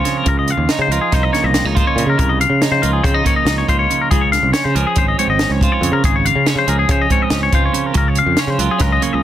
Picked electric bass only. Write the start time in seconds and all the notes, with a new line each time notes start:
0.26 C#2
0.57 D#2
0.79 C#3
0.88 C#2
1.13 C2
1.44 C2
1.65 C#2
1.96 A#2
2.06 C#3
2.19 C2
2.50 C#3
2.71 C#3
2.83 C#2
3.04 C#3
3.45 C#2
3.69 C#2
4.12 C#2
4.43 C2
4.65 C#3
4.75 C#2
4.97 G#1
5.27 G#1
5.49 C#2
5.81 F2
5.92 C#3
6.04 G#1
6.35 C#3
6.55 C#3
6.67 C#2
6.89 C#3
7.31 C#2
7.52 C#2
7.95 C#2
8.26 F2
8.47 C#3
8.59 C#2
8.81 C#2
9.14 C#2